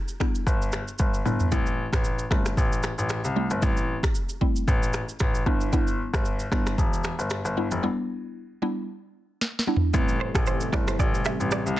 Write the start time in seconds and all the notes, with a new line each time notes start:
Already playing: G3 B3 D4 E4
0.08 shaker
0.20 G3 B3 D4 E4, finger snap, kick, cross-stick
0.35 shaker
0.47 G1, kick, shaker
0.62 shaker
0.72 finger snap, cross-stick, shaker
0.88 shaker
0.99 G1, kick, high tom, shaker
1.14 shaker
1.25 G1 G3 B3 D4 E4, mid tom, shaker
1.40 floor tom, shaker
1.52 A1 G3 A3 C4 E4, kick, shaker
1.66 shaker
1.93 A1, finger snap, kick, cross-stick, shaker
2.04 shaker
2.19 shaker
2.31 G1 G3 A3 C4 E4, finger snap, kick, cross-stick
2.46 finger snap, cross-stick, shaker
2.57 A1, kick, shaker
2.73 shaker
2.83 finger snap, cross-stick, shaker
2.98 A1, shaker
3.09 finger snap, cross-stick, shaker
3.24 C2, shaker
3.36 G3 A3 C4 E4
3.50 G1, shaker
3.62 A1 G3 A3 C4 E4, kick, shaker
3.77 shaker
4.03 finger snap, kick, cross-stick, shaker
4.15 shaker
4.29 shaker
4.41 G3 A3 C4 E4, kick
4.56 shaker
4.68 A1, kick, shaker
4.83 shaker
4.93 finger snap, cross-stick, shaker
5.09 shaker
5.20 A1, finger snap, kick, cross-stick, shaker
5.35 shaker
5.46 G1 G3 B3 D4 E4, kick
5.61 shaker
5.73 G3 B3 D4 E4, kick, shaker
5.87 shaker
6.14 G1, finger snap, kick, cross-stick, shaker
6.25 shaker
6.39 shaker
6.52 G1 G3 B3 D4 E4, finger snap, kick, cross-stick
6.66 finger snap, cross-stick, shaker
6.78 E1, kick, shaker
6.93 shaker
7.04 finger snap, cross-stick, shaker
7.19 G1, shaker
7.30 finger snap, cross-stick, shaker
7.45 G1, shaker
7.57 G3 B3 D4 E4
7.71 F1, shaker
7.83 G3 B3 D4 E4
8.62 G3 B3 D4 E4
9.41 snare
9.59 snare
9.67 G3 B3 D4 E4
9.77 floor tom
9.93 A1 C3 G3 A3 C4 E4, kick, shaker
10.08 shaker
10.21 C5
10.35 A1 A4, finger snap, kick, cross-stick, shaker
10.46 C5, shaker
10.61 shaker
10.73 G1 G3 A3 C4 E4 D5, finger snap, kick, cross-stick
10.88 C5, finger snap, cross-stick, shaker
10.99 A1 D5, kick, shaker
11.14 shaker
11.25 E5, finger snap, cross-stick, shaker
11.40 A1, shaker
11.51 D5, finger snap, cross-stick, shaker
11.66 C2, shaker